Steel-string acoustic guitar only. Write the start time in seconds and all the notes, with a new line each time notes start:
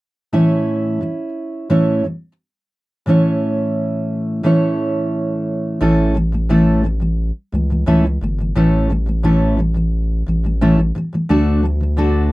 0.33 A2 E3 A3 C#4 E4 C#5
1.01 A2 E3 A3
1.70 A2 E3 A3 C#4 E4 C#5
2.04 A2 E3 A3
3.06 A2 E3 A3 C#4 E4 C#5
4.43 A2 E3 A3 C#4 E4 C#5
5.81 A2 E3 A3 C#4 E4 A4
6.15 A2 E3 A3
6.32 A2 E3 A3
6.49 A2 E3 A3 C#4 E4 A4
6.84 A2 E3 A3
7.00 A2 E3 A3
7.52 A2 E3 A3
7.70 A2 E3 A3
7.86 A2 E3 A3 C#4 E4 A4
8.04 A2 E3 A3
8.21 A2 E3 A3
8.38 A2 E3 A3
8.55 A2 E3 A3 C#4 E4 A4
8.90 A2 E3 A3
9.06 A2 E3 A3
9.23 A2 E3 A3 C#4 E4 A4
9.57 A2 E3 A3
9.74 A2 E3 A3
10.26 A2 E3 A3
10.44 A2 E3 A3
10.61 A2 E3 A3 C#4 E4 A4
10.77 A2 E3 A3
10.95 A2 E3 A3
11.13 A2 E3 A3
11.29 D3 A3 D4 F#4 A4
11.63 D3 A3
11.81 D3 A3
11.97 D3 A3 D4 F#4 A4